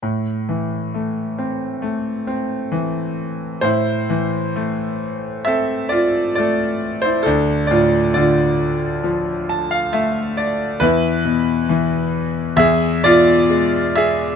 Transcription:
<<
  \new Staff \with { instrumentName = "Grand piano" } { \time 4/4 \key a \minor \tempo 4 = 67 << { r1 | r1 | r2 r8 a''16 f''16 e''8 d''8 | r1 | } \\ { r1 | <e' c''>4. r8 <a' e''>8 <f' d''>8 <a' d''>8. <e' c''>16 | <d' a'>8 <f' d''>8 <f' d''>2~ <f' d''>8 r8 | <e' b'>2 <gis' e''>8 <f' d''>4 <gis' e''>8 | } >> }
  \new Staff \with { instrumentName = "Grand piano" } { \clef bass \time 4/4 \key a \minor a,8 e8 a8 c'8 a8 c'8 e4 | a,8 e8 a4 c'4 a4 | d,8 a,8 d4 f4 a4 | e,8 b,8 e4 e,8 b,8 gis4 | }
>>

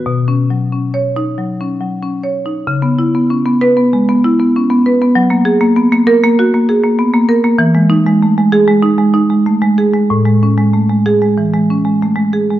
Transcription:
<<
  \new Staff \with { instrumentName = "Marimba" } { \time 4/4 \key cis \minor \tempo 4 = 96 r4 \tuplet 3/2 { r8 cis''4 } r2 | r4. b'8 r2 | r4. ais'8 r2 | r4. gis'8 r2 |
r4. gis'8 r2 | }
  \new Staff \with { instrumentName = "Marimba" } { \time 4/4 \key cis \minor \tuplet 3/2 { b,8 cis'8 fis8 cis'4 dis'8 fis8 cis'8 fis8 cis'8 cis''8 dis'8 } | cis16 b16 e'16 b16 cis'16 b8 b16 gis16 b16 e'16 b16 cis'16 b16 b'16 b16 | fis16 ais16 gis'16 ais16 b16 ais8 ais16 fis'16 ais16 gis'16 ais16 b16 ais16 ais'16 ais16 | e16 gis16 dis'16 gis16 a16 gis8 gis16 dis'16 gis16 dis'16 gis16 a16 gis16 gis'16 gis16 |
a,16 gis16 cis'16 gis16 a16 gis8 gis16 e16 gis16 cis'16 gis16 a16 gis16 gis'16 gis16 | }
>>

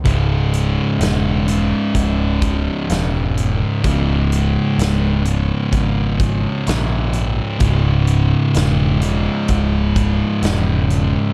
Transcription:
<<
  \new Staff \with { instrumentName = "Distorted electric guitar" } { \clef bass \time 4/4 \key cis \minor \tempo 4 = 64 <cis, gis, cis>4. <cis, gis, cis>2~ <cis, gis, cis>8 | <cis, gis, cis>4. <cis, gis, cis>2~ <cis, gis, cis>8 | <cis, gis, cis>4. <cis, gis, cis>2~ <cis, gis, cis>8 | }
  \new Staff \with { instrumentName = "Distorted electric guitar" } { \clef bass \time 4/4 \key cis \minor <cis, gis, cis>1 | <cis, gis, cis>1 | <cis, gis, cis>1 | }
  \new Staff \with { instrumentName = "Picked electric bass" } { \clef bass \time 4/4 \key cis \minor cis,,4 e,,4 cis,,4 e,,4 | cis,,4 cis,,4 gis,,4 ais,,4 | cis,,4 e,,4 cis,,4 e,,4 | }
  \new DrumStaff \with { instrumentName = "Drums" } \drummode { \time 4/4 <hh bd>8 hh8 <hh sn>8 hh8 <hh bd>8 <hh bd>8 <hh sn>8 hh8 | <hh bd>8 hh8 <hh sn>8 hh8 <hh bd>8 <hh bd>8 <hh sn>8 hh8 | <hh bd>8 hh8 <hh sn>8 hh8 <hh bd>8 <hh bd>8 <hh sn>8 hh8 | }
>>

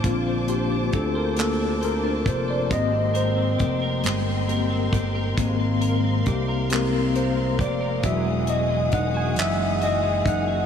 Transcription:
<<
  \new Staff \with { instrumentName = "String section" } { \time 6/8 \key aes \lydian \tempo 4. = 45 << { <c'' d'''>2. | <bes' c'''>2.~ | <bes' c'''>2. | <gis' dis'''>2. | } \\ { a''2. | g''2. | f''2. | fis''2. | } >> }
  \new Staff \with { instrumentName = "Tine electric piano" } { \time 6/8 \key aes \lydian f'8 g'8 a'16 bes'16 a'8 bes'8 c''16 d''16 | ees''8 c''2~ c''8 | r4 g'8 bes'8 c''8 d''8 | e''8 dis''8 fis''16 gis''16 e''8 dis''8 fis''8 | }
  \new Staff \with { instrumentName = "Tine electric piano" } { \time 6/8 \key aes \lydian <d bes c'>2. | <bes c' g'>8 r4. <bes c' g'>8 r8 | <aes bes c'>4. <bes c' g'>8 r4 | <fis gis fis'>4. r4. | }
  \new Staff \with { instrumentName = "Clean electric guitar" } { \time 6/8 \key aes \lydian <bes d' a' c''>16 d'16 c''16 d'16 a'16 c''16 bes16 d'16 c''16 d'16 a'16 c''16 | aes16 c'16 bes'16 c'16 g'16 bes'16 aes16 c'16 bes'16 c'16 g'16 bes'16 | aes16 c'16 bes'16 c'16 g'16 bes'16 aes16 c'16 bes'16 c'16 g'16 bes'16 | e16 gis16 fis'16 gis16 dis'16 fis'16 e16 gis16 fis'16 gis16 dis'16 fis'16 | }
  \new Staff \with { instrumentName = "Fingered electric bass" } { \clef bass \time 6/8 \key aes \lydian bes,,4 d,4. f,,8 | aes,,4 f,,8 g,,4 g,,8 | aes,,4 c,4. f,,8 | e,,4 e,,8 fis,,4 fis,,8 | }
  \new DrumStaff \with { instrumentName = "Drums" } \drummode { \time 6/8 <hh bd>8 hh8 <hh bd>8 <hc hh>8 hh8 <hh bd>8 | <hh bd>8 hh8 <hh bd>8 <hc hh>8 hh8 <hh bd>8 | <hh bd>8 hh8 <hh bd>8 <hc hh>8 hh8 <hh bd>8 | <hh bd>8 hh8 <hh bd>8 <hc hh>8 hh8 <hh bd>8 | }
>>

